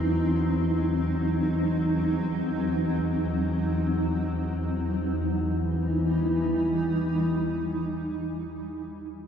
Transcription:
Already playing: E2 E3 F#3 C4 D#4
4.96 E2 E3
5.14 G3
5.32 D#4

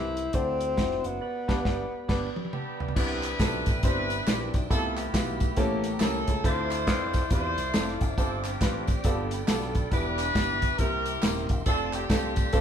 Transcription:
Already playing: C2 G2 C4 E4 G4 B4 C5 E5 C6
0.17 closed hi-hat
0.33 D2 D3 C4 D4 E4 F#4 C5 D5, kick, closed hi-hat
0.61 closed hi-hat
0.77 F1 D4 E4 F#4 C5, kick, snare, closed hi-hat
0.91 snare
1.04 F#1 B3, closed hi-hat
1.21 G4 B4 D5 B5
1.48 G1 G2 B3 D4 G4 B4, kick, snare, crash
1.65 G1 B3 D4 G4, kick, snare
2.08 G1 B3 D4 G4 B4, kick, snare, crash
2.36 high tom
2.45 high tom
2.52 B3 D4 G4, mid tom
2.80 floor tom
2.88 floor tom
2.96 C2 C3 B3 C4 D4 E4 G4 B4 D5 E5 G5, kick, crash, tambourine
3.23 clap, closed hi-hat, tambourine
3.39 B1 C4 D4 E4 G4 A4, kick, snare, clap, closed hi-hat, tambourine
3.66 A1, kick, snare, closed hi-hat, tambourine
3.83 G1 C4 D4 E4 G4 B4 C5, kick, closed hi-hat, tambourine
4.10 closed hi-hat, tambourine
4.27 A#1 C4 D4 E4 G4 B4, snare, clap, closed hi-hat, tambourine
4.54 B1, kick, closed hi-hat, tambourine
4.70 C2 C3 A3 B3 E4 F4 G4 A4 G5 B5, kick, closed hi-hat, tambourine
4.97 B3 E4 G4, clap, closed hi-hat, tambourine
5.13 B1 B3 E4 F4 G4 B4, kick, snare, clap, closed hi-hat, tambourine
5.40 kick, closed hi-hat, tambourine
5.56 A1 A2 A#3 C#4 E4 G4 A4 C#5 A#5, kick, closed hi-hat, tambourine
5.84 closed hi-hat, tambourine
6.00 C2 A#3 C#4 E4 G4 A4 A#4, snare, clap, closed hi-hat, tambourine
6.27 C#2, kick, closed hi-hat, tambourine
6.44 D2 D3 C4 D4 E4 F4 A4 C5 D5 E5 D6, kick, closed hi-hat, tambourine
6.71 clap, closed hi-hat, tambourine
6.87 F2 C4 D4 E4 F4 B4, kick, snare, clap, closed hi-hat, tambourine
7.13 kick, snare, closed hi-hat, tambourine
7.30 E2 C4 D4 E4 F4 G4 C5, kick, closed hi-hat, tambourine
7.58 C2, closed hi-hat, tambourine
7.74 F1 C4 D4 E4 F4 A4, snare, clap, closed hi-hat, tambourine
7.88 snare
8.01 F#1, kick, closed hi-hat, tambourine
8.18 G1 G2 C4 D4 F4 G4 A4 C5 G5, kick, closed hi-hat, tambourine
8.44 C4 D4 G4, clap, closed hi-hat, tambourine
8.61 A1 C4 D4 F4 G4 B4, kick, snare, clap, closed hi-hat, tambourine
8.87 kick, closed hi-hat, tambourine
9.04 G1 G2 B3 D4 F4 G4 A4 B5, kick, closed hi-hat, tambourine
9.31 closed hi-hat, tambourine
9.47 B1 B3 D4 F4 G4 A4, snare, clap, closed hi-hat, tambourine
9.62 snare
9.75 kick, closed hi-hat, tambourine
9.91 E1 E3 B3 D4 E4 G4 B4 E5 G5 D6, kick, closed hi-hat, tambourine
10.19 clap, closed hi-hat, tambourine
10.35 G1 B3 D4 E4 G4 D5, kick, snare, clap, closed hi-hat, tambourine
10.62 kick, closed hi-hat, tambourine
10.78 C2 C3 A#3 C4 E4 G4 A#4 C6, kick, closed hi-hat, tambourine
11.06 closed hi-hat, tambourine
11.22 D#1 A#3 C4 E4 G4 A#4, snare, clap, closed hi-hat, tambourine
11.36 snare
11.49 E1, kick, closed hi-hat, tambourine
11.66 F1 A3 C4 D4 F4 A4 D5 F5 C6, kick, closed hi-hat, tambourine
11.93 C4 D4 G4, clap, closed hi-hat, tambourine
12.10 C2 A3 C4 D4 F4 A4, kick, snare, clap, closed hi-hat, tambourine
12.36 kick, closed hi-hat, tambourine
12.53 C2 A3 C4 D4 F4 A4, kick, closed hi-hat, tambourine

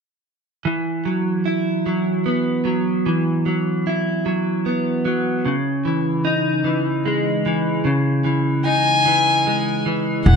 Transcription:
0.65 E3
1.05 F#3
1.46 E4
1.86 F#3
2.26 B3
2.65 F#3
3.06 E3
3.46 F#3
3.87 E4
4.26 F#3
4.66 B3
5.05 F#3
5.45 C#3
5.85 E3
6.25 D#4
6.64 E3
7.06 G#3
7.46 E3
7.85 C#3
8.24 E3
8.65 D#4 G#5
9.06 E3
9.47 G#3
9.86 E3
10.26 E1 E3 F#5

